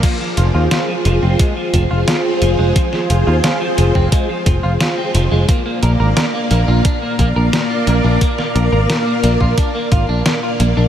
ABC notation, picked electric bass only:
X:1
M:4/4
L:1/16
Q:1/4=88
K:Fdor
V:1 name="Picked electric bass" clef=bass
z2 F,,, E,, z2 F,,, F,,, z2 F,,, F,,, z2 F,,, F,,, | z2 F,,, E,, z2 F,,, F,,, z2 F,,, F,,, z2 F,,, F,,, | z2 B,,, A,,, z2 B,,, B,,, z2 B,,, B,,, z2 B,,, B,,, | z2 B,,, A,,, z2 B,,, B,,, z2 A,,, B,,, z2 B,,, B,,, |]